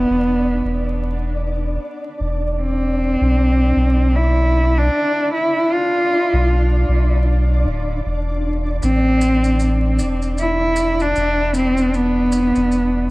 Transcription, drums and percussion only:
8.83 maracas medium
9.21 maracas medium
9.44 maracas soft
9.59 maracas soft
9.99 maracas medium
10.22 maracas soft
10.38 maracas medium
10.76 maracas medium
11.00 maracas soft
11.16 maracas soft
11.54 maracas medium
11.77 maracas soft
11.94 maracas soft
12.32 maracas medium
12.55 maracas soft
12.71 maracas soft

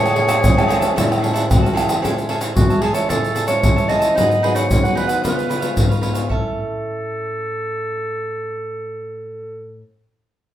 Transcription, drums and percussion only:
0.06 pandeiro soft
0.06 tamborim medium
0.06 shaker soft
0.16 pandeiro medium
0.29 pandeiro medium
0.29 tamborim medium
0.29 shaker medium
0.44 pandeiro medium
0.44 shaker medium
0.44 surdo medium
0.58 pandeiro soft
0.58 tamborim medium
0.58 shaker soft
0.70 pandeiro medium
0.70 tamborim medium
0.70 shaker medium
0.82 pandeiro medium
0.82 shaker medium
0.98 pandeiro medium
0.98 shaker medium
0.98 surdo medium
1.12 pandeiro soft
1.12 tamborim medium
1.12 shaker soft
1.24 pandeiro medium
1.36 pandeiro medium
1.36 shaker medium
1.51 pandeiro medium
1.51 tamborim medium
1.51 shaker medium
1.51 surdo loud
1.66 pandeiro soft
1.66 shaker soft
1.77 pandeiro medium
1.77 tamborim medium
1.77 shaker medium
1.89 pandeiro medium
1.89 tamborim medium
1.89 shaker medium
2.05 pandeiro medium
2.05 shaker medium
2.05 surdo medium
2.18 pandeiro soft
2.18 shaker soft
2.29 pandeiro medium
2.41 pandeiro medium
2.41 shaker medium
2.57 pandeiro medium
2.57 shaker medium
2.57 surdo medium
2.70 pandeiro soft
2.70 shaker soft
2.82 pandeiro medium
2.95 pandeiro medium
2.95 shaker medium
3.10 pandeiro medium
3.10 shaker medium
3.10 surdo soft
3.24 pandeiro soft
3.24 shaker soft
3.36 pandeiro medium
3.36 shaker medium
3.48 pandeiro medium
3.48 shaker medium
3.63 pandeiro medium
3.63 shaker medium
3.63 surdo medium
3.78 pandeiro soft
3.78 shaker soft
3.89 pandeiro medium
4.02 pandeiro medium
4.02 shaker medium
4.18 pandeiro medium
4.18 shaker medium
4.18 surdo medium
4.31 pandeiro soft
4.31 shaker soft
4.44 pandeiro soft
4.56 pandeiro medium
4.56 shaker medium
4.71 pandeiro medium
4.71 shaker medium
4.71 surdo medium
4.85 pandeiro soft
4.85 shaker soft
4.97 pandeiro soft
5.09 pandeiro medium
5.09 shaker medium
5.25 pandeiro medium
5.25 shaker medium
5.25 surdo soft
5.39 pandeiro soft
5.39 shaker soft
5.51 pandeiro medium
5.51 shaker medium
5.62 pandeiro medium
5.62 shaker medium
5.77 pandeiro medium
5.77 shaker medium
5.77 surdo medium
5.91 pandeiro soft
5.91 shaker soft
6.03 pandeiro soft
6.15 pandeiro medium
6.15 shaker medium
6.30 surdo medium

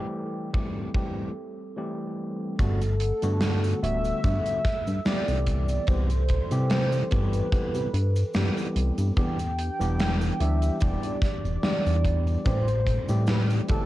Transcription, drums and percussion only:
0.54 kick loud
0.94 kick loud
2.59 kick loud
2.59 closed hi-hat medium
2.59 cabasa medium
2.82 closed hi-hat medium
2.82 cabasa soft
3.00 closed hi-hat loud
3.22 closed hi-hat medium
3.22 cabasa medium
3.41 snare loud
3.41 closed hi-hat medium
3.41 cabasa medium
3.64 closed hi-hat medium
3.64 cabasa medium
3.84 closed hi-hat medium
4.05 closed hi-hat medium
4.05 cabasa medium
4.24 kick loud
4.24 closed hi-hat medium
4.24 cabasa medium
4.46 closed hi-hat medium
4.46 cabasa soft
4.65 kick loud
4.65 snare soft
4.65 closed hi-hat loud
4.87 closed hi-hat medium
4.87 cabasa medium
5.06 snare loud
5.06 closed hi-hat medium
5.06 cabasa medium
5.28 closed hi-hat medium
5.28 cabasa soft
5.47 kick medium
5.47 closed hi-hat loud
5.69 closed hi-hat medium
5.69 cabasa medium
5.87 kick loud
5.87 closed hi-hat medium
5.87 cabasa medium
6.10 closed hi-hat medium
6.10 cabasa soft
6.29 kick medium
6.29 closed hi-hat loud
6.51 closed hi-hat medium
6.51 cabasa medium
6.70 snare loud
6.70 closed hi-hat medium
6.70 cabasa medium
6.92 closed hi-hat medium
6.92 cabasa medium
7.11 kick loud
7.11 closed hi-hat loud
7.33 closed hi-hat medium
7.33 cabasa medium
7.52 kick loud
7.52 closed hi-hat medium
7.52 cabasa medium
7.75 closed hi-hat medium
7.75 cabasa medium
7.94 closed hi-hat loud
8.16 closed hi-hat medium
8.16 cabasa medium
8.34 snare loud
8.34 closed hi-hat medium
8.34 cabasa medium
8.57 closed hi-hat medium
8.57 cabasa soft
8.76 closed hi-hat loud
8.98 closed hi-hat medium
8.98 cabasa medium
9.17 kick loud
9.17 closed hi-hat medium
9.17 cabasa medium
9.39 closed hi-hat medium
9.39 cabasa soft
9.59 closed hi-hat medium
9.81 closed hi-hat medium
9.81 cabasa medium
9.99 snare loud
9.99 closed hi-hat medium
9.99 cabasa medium
10.21 closed hi-hat medium
10.21 cabasa soft
10.40 closed hi-hat loud
10.62 closed hi-hat medium
10.62 cabasa medium
10.81 kick loud
10.81 closed hi-hat medium
10.81 cabasa medium
11.03 closed hi-hat medium
11.03 cabasa soft
11.22 kick loud
11.22 snare soft
11.22 closed hi-hat loud
11.45 closed hi-hat medium
11.45 cabasa medium
11.63 snare loud
11.63 closed hi-hat medium
11.63 cabasa medium
11.86 closed hi-hat medium
11.86 cabasa soft
12.04 kick medium
12.04 closed hi-hat loud
12.27 closed hi-hat medium
12.27 cabasa medium
12.46 kick loud
12.46 closed hi-hat medium
12.46 cabasa medium
12.68 closed hi-hat medium
12.68 cabasa soft
12.87 kick medium
12.87 closed hi-hat loud
13.09 closed hi-hat medium
13.09 cabasa medium
13.27 snare loud
13.27 closed hi-hat medium
13.27 cabasa medium
13.50 closed hi-hat medium
13.50 cabasa soft
13.68 kick loud
13.68 closed hi-hat medium

